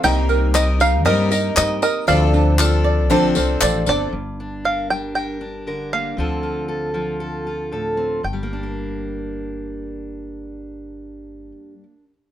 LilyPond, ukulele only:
\new Staff \with { instrumentName = "Ukulele" } { \time 4/4 \key g \minor \tempo 4 = 117 ees'8 bes'4 ees'8 bes'8 ees''8 ees'8 bes'8 | d''8 d'8 f'8 d''8 d'8 f'8 d''8 d'8 | r1 | r1 |
r1 | r1 | }